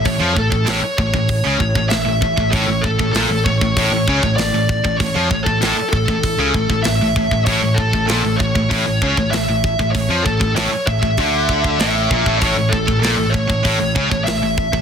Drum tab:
HH |o---o---o---o---|o---o---o---o---|o---o---o---o---|o---o---o---o---|
SD |----o-------o---|----o-------o---|----o-------o---|----o-------o---|
BD |o-oo--ooo-oo--oo|o-oo--ooo-oo--oo|o-oo--ooo-oo--oo|o-oo--ooo-oo--oo|

HH |o---o---o---o---|o---o---o---o---|
SD |----o-------o---|----o-------o---|
BD |o-oo--ooo-oo--oo|o-oo--ooo-oo--oo|